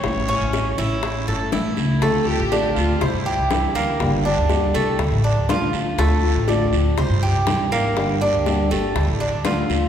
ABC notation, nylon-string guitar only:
X:1
M:4/4
L:1/8
Q:1/4=121
K:Dm
V:1 name="Nylon-string guitar"
[E,A,^CE]3 [A,CE] z [A,CE] [E,A,CE]2 | [D,A,CF] [A,CF] [D,A,CF] [A,CF] z2 [C,E,G,DE] [G,DE] | [D,G,B,DG] [B,DG] [D,G,B,DG] [B,DG] z2 [D,A,DF] [A,DF] | [D,A,CF] [A,CF] [D,A,CF] [A,CF] z2 [C,E,G,DE] [G,DE] |
[D,G,B,DG] [B,DG] [D,G,B,DG] [B,DG] z2 [D,A,DF] [A,DF] |]